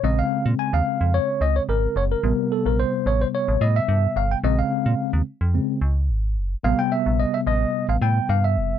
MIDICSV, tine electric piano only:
0, 0, Header, 1, 2, 480
1, 0, Start_track
1, 0, Tempo, 550459
1, 31, Time_signature, 4, 2, 24, 8
1, 7664, End_track
2, 0, Start_track
2, 0, Title_t, "Tine electric piano"
2, 0, Program_c, 0, 4
2, 28, Note_on_c, 0, 49, 57
2, 33, Note_on_c, 0, 56, 49
2, 37, Note_on_c, 0, 75, 98
2, 38, Note_on_c, 0, 60, 61
2, 164, Note_on_c, 0, 77, 93
2, 165, Note_off_c, 0, 75, 0
2, 385, Note_off_c, 0, 77, 0
2, 516, Note_on_c, 0, 80, 104
2, 643, Note_on_c, 0, 77, 96
2, 645, Note_off_c, 0, 80, 0
2, 995, Note_on_c, 0, 73, 97
2, 1004, Note_off_c, 0, 77, 0
2, 1236, Note_on_c, 0, 75, 104
2, 1241, Note_off_c, 0, 73, 0
2, 1352, Note_off_c, 0, 75, 0
2, 1362, Note_on_c, 0, 73, 82
2, 1412, Note_off_c, 0, 73, 0
2, 1476, Note_on_c, 0, 70, 94
2, 1697, Note_off_c, 0, 70, 0
2, 1718, Note_on_c, 0, 73, 88
2, 1774, Note_off_c, 0, 73, 0
2, 1845, Note_on_c, 0, 70, 85
2, 1915, Note_off_c, 0, 49, 0
2, 1917, Note_off_c, 0, 56, 0
2, 1920, Note_off_c, 0, 60, 0
2, 1948, Note_on_c, 0, 48, 55
2, 1953, Note_on_c, 0, 55, 53
2, 1959, Note_on_c, 0, 59, 60
2, 2196, Note_on_c, 0, 69, 81
2, 2205, Note_off_c, 0, 70, 0
2, 2322, Note_on_c, 0, 70, 84
2, 2325, Note_off_c, 0, 69, 0
2, 2437, Note_off_c, 0, 70, 0
2, 2437, Note_on_c, 0, 72, 100
2, 2676, Note_on_c, 0, 73, 86
2, 2682, Note_off_c, 0, 72, 0
2, 2803, Note_on_c, 0, 72, 94
2, 2805, Note_off_c, 0, 73, 0
2, 2853, Note_off_c, 0, 72, 0
2, 2917, Note_on_c, 0, 73, 92
2, 3154, Note_on_c, 0, 75, 104
2, 3161, Note_off_c, 0, 73, 0
2, 3281, Note_on_c, 0, 76, 94
2, 3284, Note_off_c, 0, 75, 0
2, 3634, Note_on_c, 0, 77, 87
2, 3643, Note_off_c, 0, 76, 0
2, 3762, Note_on_c, 0, 79, 85
2, 3764, Note_off_c, 0, 77, 0
2, 3812, Note_off_c, 0, 79, 0
2, 3835, Note_off_c, 0, 48, 0
2, 3838, Note_off_c, 0, 55, 0
2, 3840, Note_off_c, 0, 59, 0
2, 3867, Note_on_c, 0, 49, 57
2, 3872, Note_on_c, 0, 56, 52
2, 3875, Note_on_c, 0, 75, 97
2, 3877, Note_on_c, 0, 60, 64
2, 3999, Note_on_c, 0, 77, 89
2, 4004, Note_off_c, 0, 75, 0
2, 4445, Note_off_c, 0, 77, 0
2, 4554, Note_off_c, 0, 49, 0
2, 4557, Note_off_c, 0, 56, 0
2, 4559, Note_off_c, 0, 60, 0
2, 4829, Note_on_c, 0, 49, 54
2, 4833, Note_on_c, 0, 56, 44
2, 4837, Note_on_c, 0, 60, 59
2, 5046, Note_off_c, 0, 49, 0
2, 5048, Note_off_c, 0, 56, 0
2, 5050, Note_off_c, 0, 60, 0
2, 5785, Note_on_c, 0, 48, 58
2, 5791, Note_on_c, 0, 55, 52
2, 5793, Note_on_c, 0, 77, 100
2, 5795, Note_on_c, 0, 59, 66
2, 5919, Note_on_c, 0, 79, 96
2, 5923, Note_off_c, 0, 77, 0
2, 6033, Note_on_c, 0, 76, 89
2, 6035, Note_off_c, 0, 79, 0
2, 6274, Note_on_c, 0, 75, 95
2, 6280, Note_off_c, 0, 76, 0
2, 6400, Note_on_c, 0, 76, 86
2, 6404, Note_off_c, 0, 75, 0
2, 6451, Note_off_c, 0, 76, 0
2, 6515, Note_on_c, 0, 75, 99
2, 6855, Note_off_c, 0, 75, 0
2, 6884, Note_on_c, 0, 77, 82
2, 6933, Note_off_c, 0, 77, 0
2, 6996, Note_on_c, 0, 79, 101
2, 7235, Note_on_c, 0, 77, 93
2, 7241, Note_off_c, 0, 79, 0
2, 7363, Note_on_c, 0, 76, 88
2, 7364, Note_off_c, 0, 77, 0
2, 7664, Note_off_c, 0, 48, 0
2, 7664, Note_off_c, 0, 55, 0
2, 7664, Note_off_c, 0, 59, 0
2, 7664, Note_off_c, 0, 76, 0
2, 7664, End_track
0, 0, End_of_file